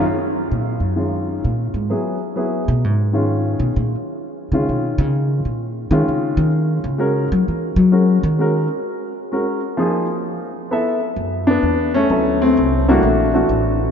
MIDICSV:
0, 0, Header, 1, 3, 480
1, 0, Start_track
1, 0, Key_signature, 6, "major"
1, 0, Tempo, 464037
1, 34, Time_signature, 3, 2, 24, 8
1, 14390, End_track
2, 0, Start_track
2, 0, Title_t, "Grand piano"
2, 0, Program_c, 0, 0
2, 994, Note_on_c, 0, 51, 41
2, 994, Note_on_c, 0, 56, 36
2, 1003, Note_on_c, 0, 65, 46
2, 1005, Note_on_c, 0, 61, 33
2, 1476, Note_off_c, 0, 51, 0
2, 1476, Note_off_c, 0, 56, 0
2, 1481, Note_off_c, 0, 61, 0
2, 1481, Note_off_c, 0, 65, 0
2, 1963, Note_on_c, 0, 54, 46
2, 1967, Note_on_c, 0, 59, 42
2, 1972, Note_on_c, 0, 68, 50
2, 1973, Note_on_c, 0, 64, 42
2, 2246, Note_off_c, 0, 54, 0
2, 2248, Note_off_c, 0, 59, 0
2, 2251, Note_off_c, 0, 64, 0
2, 2251, Note_off_c, 0, 68, 0
2, 2438, Note_on_c, 0, 54, 46
2, 2446, Note_on_c, 0, 64, 46
2, 2448, Note_on_c, 0, 59, 43
2, 2452, Note_on_c, 0, 68, 52
2, 2724, Note_off_c, 0, 54, 0
2, 2728, Note_off_c, 0, 64, 0
2, 2729, Note_off_c, 0, 59, 0
2, 2731, Note_off_c, 0, 68, 0
2, 3240, Note_on_c, 0, 51, 51
2, 3248, Note_on_c, 0, 56, 47
2, 3248, Note_on_c, 0, 61, 54
2, 3254, Note_on_c, 0, 65, 55
2, 3850, Note_off_c, 0, 51, 0
2, 3854, Note_off_c, 0, 56, 0
2, 3854, Note_off_c, 0, 61, 0
2, 3857, Note_off_c, 0, 65, 0
2, 4686, Note_on_c, 0, 51, 55
2, 4692, Note_on_c, 0, 61, 48
2, 4694, Note_on_c, 0, 56, 47
2, 4699, Note_on_c, 0, 65, 59
2, 5293, Note_off_c, 0, 51, 0
2, 5296, Note_off_c, 0, 61, 0
2, 5297, Note_off_c, 0, 56, 0
2, 5300, Note_off_c, 0, 65, 0
2, 6113, Note_on_c, 0, 51, 67
2, 6114, Note_on_c, 0, 56, 59
2, 6120, Note_on_c, 0, 61, 54
2, 6129, Note_on_c, 0, 65, 66
2, 6726, Note_off_c, 0, 51, 0
2, 6726, Note_off_c, 0, 56, 0
2, 6730, Note_off_c, 0, 61, 0
2, 6734, Note_off_c, 0, 65, 0
2, 7222, Note_on_c, 0, 56, 53
2, 7232, Note_on_c, 0, 66, 46
2, 7233, Note_on_c, 0, 61, 53
2, 7238, Note_on_c, 0, 70, 63
2, 7516, Note_off_c, 0, 56, 0
2, 7521, Note_off_c, 0, 66, 0
2, 7522, Note_off_c, 0, 61, 0
2, 7524, Note_off_c, 0, 70, 0
2, 8193, Note_on_c, 0, 66, 49
2, 8194, Note_on_c, 0, 56, 47
2, 8195, Note_on_c, 0, 61, 44
2, 8197, Note_on_c, 0, 70, 52
2, 8481, Note_off_c, 0, 56, 0
2, 8481, Note_off_c, 0, 66, 0
2, 8482, Note_off_c, 0, 61, 0
2, 8483, Note_off_c, 0, 70, 0
2, 8675, Note_on_c, 0, 56, 56
2, 8680, Note_on_c, 0, 61, 46
2, 8691, Note_on_c, 0, 66, 45
2, 8698, Note_on_c, 0, 70, 59
2, 8962, Note_off_c, 0, 56, 0
2, 8964, Note_off_c, 0, 61, 0
2, 8969, Note_off_c, 0, 66, 0
2, 8973, Note_off_c, 0, 70, 0
2, 9637, Note_on_c, 0, 61, 45
2, 9638, Note_on_c, 0, 56, 48
2, 9647, Note_on_c, 0, 66, 47
2, 9649, Note_on_c, 0, 70, 54
2, 9922, Note_off_c, 0, 61, 0
2, 9923, Note_off_c, 0, 56, 0
2, 9927, Note_off_c, 0, 66, 0
2, 9928, Note_off_c, 0, 70, 0
2, 10107, Note_on_c, 0, 53, 62
2, 10116, Note_on_c, 0, 58, 54
2, 10121, Note_on_c, 0, 63, 49
2, 10129, Note_on_c, 0, 68, 61
2, 10397, Note_off_c, 0, 53, 0
2, 10401, Note_off_c, 0, 58, 0
2, 10404, Note_off_c, 0, 63, 0
2, 10408, Note_off_c, 0, 68, 0
2, 11079, Note_on_c, 0, 59, 61
2, 11081, Note_on_c, 0, 64, 57
2, 11091, Note_on_c, 0, 69, 53
2, 11095, Note_on_c, 0, 76, 71
2, 11362, Note_off_c, 0, 59, 0
2, 11364, Note_off_c, 0, 64, 0
2, 11369, Note_off_c, 0, 69, 0
2, 11370, Note_off_c, 0, 76, 0
2, 11865, Note_on_c, 0, 62, 84
2, 11900, Note_on_c, 0, 59, 73
2, 12315, Note_off_c, 0, 62, 0
2, 12333, Note_off_c, 0, 59, 0
2, 12355, Note_on_c, 0, 61, 100
2, 12370, Note_on_c, 0, 57, 74
2, 12514, Note_on_c, 0, 54, 51
2, 12519, Note_on_c, 0, 59, 43
2, 12522, Note_on_c, 0, 64, 46
2, 12529, Note_on_c, 0, 69, 59
2, 12800, Note_off_c, 0, 61, 0
2, 12808, Note_off_c, 0, 57, 0
2, 12844, Note_on_c, 0, 60, 98
2, 12858, Note_on_c, 0, 57, 67
2, 12995, Note_off_c, 0, 54, 0
2, 12997, Note_off_c, 0, 59, 0
2, 12999, Note_off_c, 0, 64, 0
2, 13002, Note_off_c, 0, 69, 0
2, 13293, Note_off_c, 0, 57, 0
2, 13327, Note_on_c, 0, 52, 68
2, 13329, Note_on_c, 0, 62, 68
2, 13330, Note_on_c, 0, 58, 77
2, 13331, Note_on_c, 0, 57, 64
2, 13333, Note_off_c, 0, 60, 0
2, 13337, Note_on_c, 0, 66, 80
2, 13346, Note_on_c, 0, 55, 59
2, 13462, Note_off_c, 0, 57, 0
2, 13477, Note_on_c, 0, 57, 57
2, 13482, Note_off_c, 0, 55, 0
2, 13483, Note_off_c, 0, 52, 0
2, 13489, Note_off_c, 0, 58, 0
2, 13498, Note_on_c, 0, 52, 44
2, 13769, Note_off_c, 0, 62, 0
2, 13774, Note_off_c, 0, 66, 0
2, 13781, Note_off_c, 0, 57, 0
2, 13786, Note_off_c, 0, 52, 0
2, 13797, Note_on_c, 0, 57, 57
2, 13801, Note_on_c, 0, 52, 55
2, 13807, Note_on_c, 0, 66, 67
2, 13808, Note_on_c, 0, 62, 52
2, 14390, Note_off_c, 0, 52, 0
2, 14390, Note_off_c, 0, 57, 0
2, 14390, Note_off_c, 0, 62, 0
2, 14390, Note_off_c, 0, 66, 0
2, 14390, End_track
3, 0, Start_track
3, 0, Title_t, "Upright bass"
3, 0, Program_c, 1, 32
3, 533, Note_on_c, 1, 46, 70
3, 823, Note_off_c, 1, 46, 0
3, 829, Note_on_c, 1, 42, 57
3, 1434, Note_off_c, 1, 42, 0
3, 1494, Note_on_c, 1, 46, 75
3, 1794, Note_off_c, 1, 46, 0
3, 1799, Note_on_c, 1, 44, 74
3, 1956, Note_off_c, 1, 44, 0
3, 2774, Note_on_c, 1, 47, 95
3, 2941, Note_off_c, 1, 47, 0
3, 2941, Note_on_c, 1, 44, 57
3, 3713, Note_off_c, 1, 44, 0
3, 3719, Note_on_c, 1, 47, 88
3, 3877, Note_off_c, 1, 47, 0
3, 3892, Note_on_c, 1, 46, 76
3, 4079, Note_off_c, 1, 46, 0
3, 4672, Note_on_c, 1, 49, 80
3, 4833, Note_off_c, 1, 49, 0
3, 4852, Note_on_c, 1, 47, 64
3, 5148, Note_off_c, 1, 47, 0
3, 5155, Note_on_c, 1, 49, 100
3, 5603, Note_off_c, 1, 49, 0
3, 5638, Note_on_c, 1, 46, 67
3, 6085, Note_off_c, 1, 46, 0
3, 6110, Note_on_c, 1, 51, 96
3, 6272, Note_off_c, 1, 51, 0
3, 6293, Note_on_c, 1, 49, 64
3, 6584, Note_off_c, 1, 49, 0
3, 6590, Note_on_c, 1, 51, 101
3, 7040, Note_off_c, 1, 51, 0
3, 7075, Note_on_c, 1, 49, 86
3, 7522, Note_off_c, 1, 49, 0
3, 7570, Note_on_c, 1, 54, 92
3, 7722, Note_off_c, 1, 54, 0
3, 7741, Note_on_c, 1, 52, 72
3, 8024, Note_off_c, 1, 52, 0
3, 8031, Note_on_c, 1, 54, 99
3, 8479, Note_off_c, 1, 54, 0
3, 8517, Note_on_c, 1, 51, 96
3, 8962, Note_off_c, 1, 51, 0
3, 11548, Note_on_c, 1, 42, 74
3, 12017, Note_off_c, 1, 42, 0
3, 12029, Note_on_c, 1, 40, 72
3, 12498, Note_off_c, 1, 40, 0
3, 12513, Note_on_c, 1, 38, 72
3, 12980, Note_off_c, 1, 38, 0
3, 13004, Note_on_c, 1, 36, 78
3, 13466, Note_off_c, 1, 36, 0
3, 13477, Note_on_c, 1, 34, 77
3, 13942, Note_off_c, 1, 34, 0
3, 13957, Note_on_c, 1, 33, 81
3, 14390, Note_off_c, 1, 33, 0
3, 14390, End_track
0, 0, End_of_file